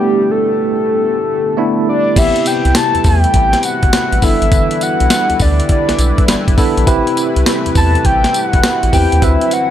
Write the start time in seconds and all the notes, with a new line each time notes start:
Already playing: D3 G3 A3 B3 D4 E4 G4
0.31 A4
1.57 A3 B3 D4 E4
1.89 D5
2.16 A1 C3 G3 A3 B3 C4 E4 G4 B4 E5, kick, closed hi-hat, crash, tambourine
2.36 closed hi-hat
2.46 G5, closed hi-hat, tambourine
2.65 C2, closed hi-hat
2.75 A5, snare, closed hi-hat, tambourine
2.95 E2, closed hi-hat
3.04 E2 G5, kick, open hi-hat, tambourine
3.24 closed hi-hat
3.34 A1, kick, closed hi-hat
3.53 snare, closed hi-hat
3.63 F#5, closed hi-hat, tambourine
3.83 G1, kick, closed hi-hat
3.93 snare, closed hi-hat, tambourine
4.12 A1, closed hi-hat
4.22 G1 D3 E3 B3 D4 E4 A4 E5, kick, open hi-hat, tambourine
4.42 G#1, closed hi-hat
4.52 G1, kick, closed hi-hat, tambourine
4.71 closed hi-hat
4.81 F#5, closed hi-hat, tambourine
5.00 B1, closed hi-hat
5.10 snare, closed hi-hat, tambourine
5.30 D2, closed hi-hat
5.39 D2 D5, kick, open hi-hat, tambourine
5.60 closed hi-hat
5.69 D5, kick, closed hi-hat
5.89 B1, snare, closed hi-hat
5.99 B1, closed hi-hat, tambourine
6.18 kick, closed hi-hat
6.28 G1, snare, closed hi-hat, tambourine
6.48 G1, kick, closed hi-hat
6.57 B3 D4 E4 A4, kick, open hi-hat, tambourine
6.77 A#1, closed hi-hat
6.87 A1 C3 A3 C4 E4 G4 B4, kick, closed hi-hat, tambourine
7.07 closed hi-hat
7.17 closed hi-hat, tambourine
7.36 C2, closed hi-hat
7.46 snare, closed hi-hat, tambourine
7.66 E2, closed hi-hat
7.75 E2 A5, kick, open hi-hat, tambourine
7.95 closed hi-hat
8.05 A1 G5, kick, closed hi-hat
8.24 snare, closed hi-hat
8.34 F#5, closed hi-hat, tambourine
8.53 G1, kick, closed hi-hat
8.63 snare, closed hi-hat, tambourine
8.83 A1, closed hi-hat
8.92 E2 C4 E4 G4 B4 G5, kick, open hi-hat, tambourine
9.12 D#2, closed hi-hat
9.22 D2 D3 F#3 C4 E4 F#4 B4 E5, kick, closed hi-hat, tambourine
9.41 closed hi-hat
9.51 F#5, closed hi-hat, tambourine